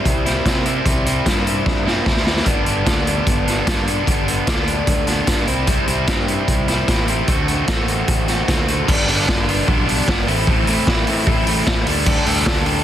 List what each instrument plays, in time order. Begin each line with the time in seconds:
Already playing: overdriven electric guitar C3 G3 C4 E4
0.05 picked electric bass C2, kick, closed hi-hat
0.25 overdriven electric guitar G3 C4 E4, snare, closed hi-hat
0.45 overdriven electric guitar C3 G3 C4 E4, picked electric bass C3, kick, snare, closed hi-hat
0.65 overdriven electric guitar G3 C4 E4, closed hi-hat
0.85 picked electric bass C2, overdriven electric guitar C3 G3 C4 E4, kick, closed hi-hat
1.05 overdriven electric guitar G3 C4 E4, closed hi-hat
1.26 picked electric bass G2, overdriven electric guitar C3 G3 C4 E4, kick, snare, closed hi-hat
1.47 closed hi-hat
1.66 picked electric bass G2, kick, snare
1.85 overdriven electric guitar G3 C4 E4, snare
2.05 picked electric bass D2, overdriven electric guitar C3 G3 C4 E4, kick, snare
2.16 snare
2.25 overdriven electric guitar G3 C4 E4, snare
2.36 snare
2.45 picked electric bass G1, overdriven electric guitar G2 D3 G3 B3 D4, kick, closed hi-hat
2.65 picked electric bass G1, overdriven electric guitar G3 B3 D4, closed hi-hat
2.85 picked electric bass D2, overdriven electric guitar G2 D3 G3 B3 D4, kick, snare, closed hi-hat
3.07 closed hi-hat
3.27 picked electric bass G1, kick, closed hi-hat
3.46 overdriven electric guitar G3 B3 D4, snare, closed hi-hat
3.66 picked electric bass G2, overdriven electric guitar D3 G3 B3 D4, kick, snare, closed hi-hat
3.86 overdriven electric guitar G3 B3 D4, closed hi-hat
4.06 picked electric bass G1, overdriven electric guitar G2 D3 G3 B3 D4, kick, closed hi-hat
4.27 overdriven electric guitar G3 B3 D4, closed hi-hat
4.47 picked electric bass D2, overdriven electric guitar G2 D3 G3 B3 D4, kick, snare, closed hi-hat
4.67 closed hi-hat
4.87 picked electric bass D2, kick, closed hi-hat
5.07 overdriven electric guitar G3 B3 D4, snare, closed hi-hat
5.27 picked electric bass G2, overdriven electric guitar D3 G3 B3 D4, kick, snare, closed hi-hat
5.46 picked electric bass C2, overdriven electric guitar C3 G3 C4 E4, closed hi-hat
5.66 overdriven electric guitar C3 G3 C4 E4, kick, closed hi-hat
5.87 picked electric bass C2, overdriven electric guitar G3 C4 E4, closed hi-hat
6.07 picked electric bass G2, overdriven electric guitar C3 G3 C4 E4, kick, snare, closed hi-hat
6.28 closed hi-hat
6.48 picked electric bass C2, kick, closed hi-hat
6.68 overdriven electric guitar G3 C4 E4, snare, closed hi-hat
6.88 picked electric bass A1, overdriven electric guitar C3 G3 C4 E4, kick, snare, closed hi-hat
7.08 overdriven electric guitar G3 C4 E4, closed hi-hat
7.28 picked electric bass D2, overdriven electric guitar D3 A3 C4 F#4, kick, closed hi-hat
7.47 overdriven electric guitar A3 C4 F#4, closed hi-hat
7.67 picked electric bass A1, overdriven electric guitar D3 A3 C4 F#4, kick, snare, closed hi-hat
7.88 closed hi-hat
8.08 picked electric bass A1, kick, closed hi-hat
8.28 overdriven electric guitar A3 C4 F#4, snare, closed hi-hat
8.48 picked electric bass D2, overdriven electric guitar D3 A3 C4 F#4, kick, snare, closed hi-hat
8.67 overdriven electric guitar A3 C4 F#4, closed hi-hat
8.87 picked electric bass G1, overdriven electric guitar G2 D3 G3 B3 D4, kick, crash
9.07 picked electric bass G1, overdriven electric guitar G2 D3 G3 B3 D4, open hi-hat
9.27 picked electric bass G1, overdriven electric guitar G2 D3 G3 B3 D4, kick, snare
9.47 overdriven electric guitar G2 D3 G3 B3 D4, open hi-hat
9.67 picked electric bass B1, overdriven electric guitar G2 D3 G3 B3 D4, kick
9.87 overdriven electric guitar G2 D3 G3 B3 D4, open hi-hat
10.07 picked electric bass G1, overdriven electric guitar G2 D3 G3 B3 D4, kick, snare
10.27 picked electric bass A1, overdriven electric guitar A2 E3 A3 C4 E4, open hi-hat
10.47 overdriven electric guitar A2 E3 A3 C4 E4, kick
10.67 overdriven electric guitar A2 E3 A3 C4 E4, open hi-hat
10.87 picked electric bass A1, overdriven electric guitar A2 E3 A3 C4 E4, kick, snare
11.07 overdriven electric guitar A2 E3 A3 C4 E4, open hi-hat
11.27 picked electric bass A1, overdriven electric guitar A2 E3 A3 C4 E4, kick
11.46 overdriven electric guitar A2 E3 A3 C4 E4, open hi-hat
11.66 picked electric bass A1, overdriven electric guitar A2 E3 A3 C4 E4, kick, snare
11.86 picked electric bass D2, overdriven electric guitar D3 G3 D4 G4 A4, open hi-hat
12.06 overdriven electric guitar D3 G3 D4 G4 A4, kick, crash
12.25 picked electric bass D2, overdriven electric guitar D3 G3 D4 G4 A4, open hi-hat
12.45 picked electric bass D2, overdriven electric guitar D3 G3 D4 G4 A4, kick, snare
12.65 overdriven electric guitar D3 G3 D4 G4 A4, open hi-hat